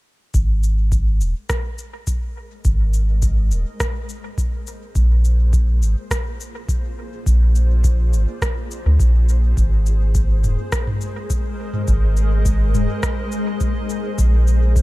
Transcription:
0.34 G#1 G#3, kick, cabasa
0.51 A#4
0.63 cabasa
0.72 G#4
0.92 kick, cabasa
1.14 C5
1.21 D#1, cabasa
1.50 kick, cross-stick, cabasa
1.60 D#5
1.78 cabasa
2.07 kick, cabasa
2.65 G#1, kick, cabasa
2.94 cabasa
3.22 kick, cabasa
3.51 D#1, cabasa
3.80 kick, cross-stick, cabasa
4.09 cabasa
4.38 kick, cabasa
4.67 cabasa
4.95 A#1 A#3, kick, cabasa
5.10 F4
5.25 cabasa
5.53 kick, cabasa
5.82 G#1, cabasa
6.11 kick, cross-stick, cabasa
6.41 cabasa
6.64 D5
6.69 kick, cabasa
7.26 A#1, kick, cabasa
7.55 cabasa
7.84 kick, cabasa
8.13 G#1, cabasa
8.42 kick, cross-stick, cabasa
8.71 cabasa
8.86 D2
9.00 A#1, kick, cabasa
9.29 cabasa
9.57 G#1 G#3, kick, cabasa
9.75 A#4
9.84 D#5, cabasa
10.15 kick, cabasa
10.44 D#1, mid tom, cabasa
10.72 kick, cross-stick, cabasa
10.87 mid tom
11.01 cabasa
11.30 kick, cabasa
11.74 mid tom
11.88 G#1, kick, cabasa
12.17 cabasa
12.45 kick, cabasa
12.74 D#1, mid tom, cabasa
13.03 kick, cross-stick, cabasa
13.32 cabasa
13.61 kick, cabasa
13.90 cabasa
14.18 A#1 A#3, kick, cabasa
14.25 F4
14.47 D5, cabasa
14.76 kick, cabasa

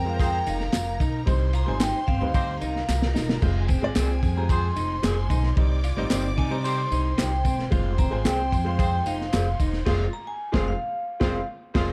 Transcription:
Already playing: F2 C4 A#4 A#5
0.05 G#3 C4 F4 A#4 F5
0.14 C5
0.19 C4 F4 G#4 C5 G5, kick, ride, tambourine
0.46 F1 D#4 F5, ride, tambourine
0.60 snare
0.72 F1, snare, clap, ride, tambourine
1.00 B1 D#4, kick, ride, tambourine
1.26 C2 G3 C4 D#4 C5 C6, kick, ride, tambourine
1.53 F4 A#5, ride, tambourine
1.66 G#1 G3 C4 D#4 C5 G#5
1.80 D#4 G5, snare, clap, ride, tambourine
2.07 G1 C4 F5, kick, ride
2.21 D2 G3 C4 D#4 B4
2.28 C5
2.34 C4 D#4 G4 C5, kick, ride, tambourine
2.61 C2 D#4 A#4 A#5, ride, tambourine
2.76 snare
2.89 C2, snare, clap, tambourine
3.02 snare
3.14 E1 D#4, snare, tambourine
3.29 snare
3.42 F1 G#3 C4 F4 G#4 C5 G#5, kick, crash, tambourine
3.68 C4, kick, ride, tambourine
3.82 G#1 G#3 C4 F4 D5
3.95 C2 C4 F4 G#4 C5, snare, clap, ride, tambourine
4.23 F2 G#5, kick, ride, tambourine
4.36 G3 C4 F4 C5 A#5
4.42 G#3
4.49 C4 F4 G#4 C5 C6, kick, ride, tambourine
4.76 F1 D#4 C5 C6, ride, tambourine
5.03 F1 F4 G#4 C5 G#5, snare, clap, ride, tambourine
5.30 B1 D#4, kick, ride, tambourine
5.43 snare
5.56 C2 G3 C4 D#4 C5 D5 D6, kick, ride
5.84 F4, ride, tambourine
5.97 G#1 G3 C4 D#4 C5
6.10 G1 C4 D#4 G4 C5, snare, clap, ride, tambourine
6.37 C3 D#4 G#5, kick, ride
6.51 G3 C4 D#4 C5 A#5
6.64 C4 D#4 G4 C5 C6, ride, tambourine
6.91 C2 D#4 C5 C6, ride, tambourine
7.18 C2 D#4 G4 C5 G5, snare, clap, ride, tambourine
7.45 E1 C4, kick, ride, tambourine
7.59 snare
7.70 F1 G#3 C4 F4 C5 C6, kick, ride, tambourine
7.98 C4 A#5, kick, ride, tambourine
8.10 G#1 G#3 C4 F4 C5 G#5
8.25 C2 C4 F4 G#4 C5 G5, snare, clap, ride, tambourine
8.52 F2, kick, ride, tambourine
8.64 G#3 C4 F4 C5 F5
8.78 C4 F4 G#4 C5 G5, kick, ride, tambourine
9.06 F1 D#4 F5, ride, tambourine
9.21 snare
9.33 F1 F4 G#4 C5, snare, clap, ride, tambourine
9.60 E1 D#4, kick, open hi-hat, ride, tambourine
9.73 snare
9.85 F1 G#3 C4 F4 G#4 C5 F5, kick, snare, crash
10.13 A#5
10.27 G#5
10.52 F1 G#3 C4 F4 G#4 C5 F5, kick, snare
10.68 F5
11.20 F1 G#3 C4 F4 G#4 C5 F5, kick, snare
11.74 F1 G#3 C4 F4 G#4 C5 F5, kick, snare, crash

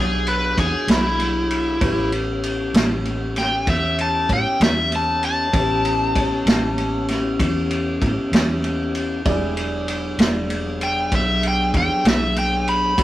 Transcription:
Already playing: B1 B3 D4 F#4 G#4 D5
0.27 B4, ride
0.58 E2 G#4, kick, ride
0.87 B1 E4, snare, ride
1.20 ride
1.51 ride
1.80 A1 B3 C#4 E4 G4 B4 C#5, kick, ride
2.12 ride
2.43 ride
2.74 A1, snare, ride
3.05 ride
3.36 G5, snare, ride
3.67 E2 E5, kick, ride
3.98 A5, ride
4.29 A2 G5, kick, ride
4.60 E2 E5, snare, ride
4.92 A5, ride
5.23 A5, ride
5.53 A1 B3 C#4 E4 G4 B4 C#5, kick, ride
5.85 ride
6.16 kick, ride
6.46 A1, snare, ride
6.78 ride
7.08 snare, ride
7.40 E2, kick, ride
7.71 ride
8.02 A2, kick, ride
8.32 E2, snare, ride
8.64 ride
8.95 ride
9.25 E1 A3 C4 D4 E4 G#4 D5 G5, kick, ride
9.56 F#3 B3 D4 G#4, ride
9.88 ride
10.18 E1, snare, ride
10.50 ride
10.81 G5, ride
11.12 B1 E5, kick, ride
11.43 ride
11.48 G5
11.74 E2 G5, kick, ride
12.05 B1 E5, snare, ride
12.36 G5, ride
12.68 B5, ride
12.97 E1 G#3 B3 D4 F#4 G#4 C#5, kick, ride

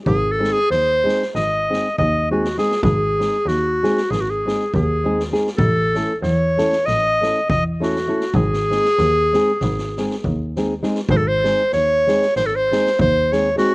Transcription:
0.06 G#1 G#4, kick
0.31 A4
0.39 G#3 C4 D#4 G#4
0.44 snare
0.52 G#4
0.70 D#2 C5, snare
1.04 G#3 C4 D#4 G#4
1.08 snare
1.22 snare
1.35 G#1 D#5, snare
1.70 G#3 C4 D#4 G#4, snare
1.98 D#2 D#5, kick
2.31 G#3 C4 D#4 F#4 G#4
2.45 snare
2.58 G#3 C4 D#4 G#4, snare
2.72 snare
2.83 G#1 G#4, kick
3.19 G#3 C4 D#4 G#4, snare
3.46 D#2 F#4, snare
3.83 G#3 C4 D#4 G#4, snare
3.97 snare
4.10 G#1 G#4, snare
4.21 F#4
4.30 G#4
4.46 G#3 C4 D#4 G#4, snare
4.74 D#2 G#4, kick
5.04 G#3 C4 D#4 G#4
5.20 snare
5.31 G#3 C4 D#4 G#4, snare
5.47 snare
5.57 A1 A4, kick
5.95 A3 C#4 E4 A4, snare
6.22 E2 C#5, snare
6.58 A3 C#4 E4 A4, snare
6.72 snare
6.86 A1 D#5, snare
7.21 A3 C#4 E4 A4, snare
7.50 E2 D#5, kick
7.80 A3 C#4 E4 F#4 A4, snare
7.96 snare
8.08 A3 C#4 E4 A4
8.20 snare
8.34 G#1 G#4, kick
8.53 snare
8.70 G#3 C4 D#4 G#4, snare
8.85 snare
8.98 D#2, snare
9.33 G#3 C4 D#4 G#4, snare
9.61 G#1, kick, snare
9.78 snare
9.97 G#3 C4 D#4 G#4, snare
10.10 snare
10.24 D#2, kick
10.56 G#3 C4 D#4 G#4, snare
10.83 G#3 C4 D#4 G#4, snare
10.95 snare
11.09 G#1 C5, kick
11.17 A4
11.28 C5
11.44 G#3 C4 D#4 G#4, snare
11.72 D#2 C#5, snare
12.07 G#3 C4 D#4 G#4, snare
12.22 snare
12.36 G#1 C5, snare
12.46 A4
12.55 C5
12.71 G#3 C4 D#4 G#4, snare
12.87 snare
12.99 D#2 C5, kick
13.32 G#3 C4 D#4 G#4 C#5, snare
13.56 G#3 C4 D#4 F#4 G#4, snare

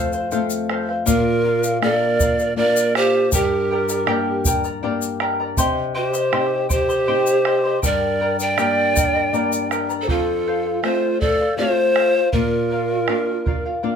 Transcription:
Already playing: F2 A3 C4 F4 A4 C5 F5
0.12 C5 F5, shaker
0.32 A3 C4 F4 A4 C5 F5, bombo rim, shaker
0.50 shaker
0.69 A4 C5 F5, bombo rim
0.89 C5 F5, bombo rim
1.06 A#2 F4 A#4 D5 F5, bombo low, shaker
1.44 A#4 D5 F5
1.63 D5 F5, bombo rim, shaker
1.82 A#3 D4 F4 A4 A#4 D5 F5, bombo rim
1.96 A#4
2.20 A#4 D5 F5, bombo low, shaker
2.39 D5 F5, shaker
2.56 A#3 D4 F4 A#4 D5 F5
2.76 shaker
2.95 G4 A#4 C5 D5 F5, bombo rim
3.14 D5 F5
3.32 G2 G4 A#4 D5 G5 A#5, bombo low, shaker
3.71 A#4 D5 G5 A#5
3.89 A#4 D5 A#5, bombo rim, shaker
4.06 A#3 D4 G4 A#4 D5 G5 A#5, bombo rim
4.45 A#4 D5 G5 A#5, bombo low, shaker
4.64 A#4 D5 A#5, shaker
4.83 A#3 D4 G4 A#4 D5 G5 A#5
5.02 shaker
5.20 A#4 D5 G5 A#5, bombo rim
5.40 A#4 D5 A#5
5.57 C3 G4 C5 D#5 G5 C6, bombo low, shaker
5.94 G4 C5 D#5 G5 C6
6.13 C5 D#5 C6, bombo rim, shaker
6.32 C4 D#4 G4 C5 D#5 G5 C6, bombo rim
6.69 G4 C5 D#5 G5 C6, bombo low, shaker
6.89 C5 D#5 C6, shaker
7.07 C4 D#4 G4 C5 D#5 G5 C6
7.27 shaker
7.45 C5 D#5 G5 C6, bombo rim
7.64 C5 D#5 C6
7.82 G2 A#4 D5 G5 A#5, bombo rim, bombo low, shaker
8.02 bombo rim
8.21 A#4 D5 G5 A#5
8.40 A#4 D5 G5 A#5, shaker
8.58 A#3 D4 G4 A#4 D5 G5 A#5, bombo rim, shaker
8.78 bombo rim
8.95 A#4 D5 G5 A#5, bombo low, shaker
9.15 A#4 D5 A#5, bombo rim
9.33 A#3 D4 G4 A#4 D5 G5 A#5, shaker
9.52 shaker
9.71 A#4 D5 G5 A#5, bombo rim, shaker
9.90 A#4 D5 A#5, bombo rim, shaker
10.02 A4 C5
10.07 F2 F4 A4 C5 F5, bombo low
10.47 A4 C5 F5
10.65 C5 F5
10.83 A3 C4 F4 A4 C5 F5, bombo rim
11.21 A4 C5 D5 F5, bombo low
11.40 C5 F5
11.57 A3 C4 F4 A4 C5 F5
11.96 A4 C5 F5, bombo rim
12.15 C5 F5
12.33 A#2 F4 A#4 D5 F5, bombo low
12.70 A#4 D5 F5
12.90 D5 F5
13.08 A#3 D4 F4 A#4 D5 F5, bombo rim
13.46 A#4 D5 F5, bombo low
13.66 D5 F5
13.83 A#3 D4 F4 A#4 D5 F5

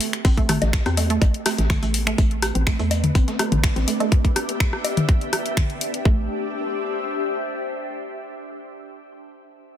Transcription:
Already playing: B3 G4
0.01 open hi-hat, tambourine
0.13 finger snap, closed hi-hat
0.25 A1 C4, kick, closed hi-hat, open hi-hat
0.37 A3, kick, closed hi-hat
0.49 A3, cross-stick, open hi-hat, mid tom, tambourine
0.62 A1, snare, closed hi-hat, low woodblock
0.73 finger snap, kick, snare, closed hi-hat, tambourine
0.86 E2 C4, cross-stick, closed hi-hat
0.97 A3, open hi-hat, tambourine, low woodblock
1.10 A3, closed hi-hat
1.22 A1, kick, closed hi-hat, tambourine, low woodblock
1.34 closed hi-hat
1.46 A3, cross-stick, snare, open hi-hat, tambourine
1.58 A1, snare, closed hi-hat
1.70 A3, finger snap, kick, snare, closed hi-hat, mid tom, tambourine
1.83 A1 A3, closed hi-hat
1.94 open hi-hat, tambourine
2.07 A3, finger snap, closed hi-hat
2.18 A1 A3 B3 D4 B4, kick, closed hi-hat, tambourine
2.31 closed hi-hat
2.42 cross-stick, open hi-hat, tambourine
2.55 A1 C4, closed hi-hat
2.67 A3, finger snap, kick, snare, closed hi-hat, tambourine
2.79 E2 A3, closed hi-hat
2.86 G4
2.91 open hi-hat, tambourine, low woodblock
3.04 closed hi-hat, mid tom
3.15 A1 C4, kick, closed hi-hat, tambourine
3.28 A3 E5, snare, closed hi-hat
3.39 A3, cross-stick, open hi-hat, tambourine
3.52 A1, closed hi-hat, mid tom
3.63 finger snap, kick, snare, closed hi-hat, tambourine
3.76 A1 C4, snare, closed hi-hat
3.88 A3, open hi-hat, tambourine
4.00 A3, closed hi-hat, low woodblock
4.12 kick, closed hi-hat
4.25 kick, closed hi-hat
4.36 cross-stick, open hi-hat
4.49 closed hi-hat
4.60 finger snap, kick, closed hi-hat
4.73 cross-stick
4.84 open hi-hat, low woodblock
4.97 closed hi-hat, mid tom
5.09 kick, closed hi-hat
5.21 closed hi-hat
5.33 cross-stick, open hi-hat
5.46 closed hi-hat
5.57 finger snap, kick, closed hi-hat, mid tom
5.70 closed hi-hat
5.81 open hi-hat
5.94 closed hi-hat
6.05 A1 A3 D4, kick
6.13 G4
6.20 C5
6.27 E5

